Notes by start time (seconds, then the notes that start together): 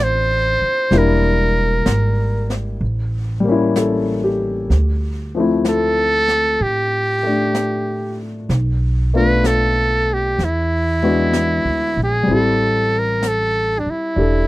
Already playing: A1 F3 A3 C4 D4 E4 F4
0.03 C5
0.62 muted upright bass stroke
0.91 E1 G3 A#3 D4 E4, brush sweep, snare
0.98 A#4
1.86 G#1, brush sweep, snare, hi-hat pedal
2.50 snare
2.81 A1, brush sweep
3.40 G3
3.44 A#3 C#4
3.52 E4
3.76 A4, brush sweep, snare, hi-hat pedal
4.24 G4
4.70 D2, brush sweep, snare
5.35 F3 A3 C4
5.40 E4
5.65 brush sweep, snare, hi-hat pedal
5.69 A4
6.28 snare
6.60 A2 G4, brush sweep
7.23 A3 D4
7.55 brush sweep, snare, hi-hat pedal
8.49 B1, brush sweep, snare
9.14 A3 B3 D4 F4 B4
9.44 A4, brush sweep, snare, hi-hat pedal
10.13 G4
10.39 E2, brush sweep, snare
10.44 E4
11.02 G#3 B3 D4 F#4
11.33 brush sweep, snare, hi-hat pedal
11.65 D2
11.97 A#1
12.03 G#4
12.23 G3
12.28 A1 C4 E4, brush sweep
12.34 G4 A4
12.98 A#4
13.22 brush sweep, snare, hi-hat pedal
13.28 A4
13.79 D4
13.86 muted upright bass stroke
13.91 E4
14.16 E1 D4 G4 A4, brush sweep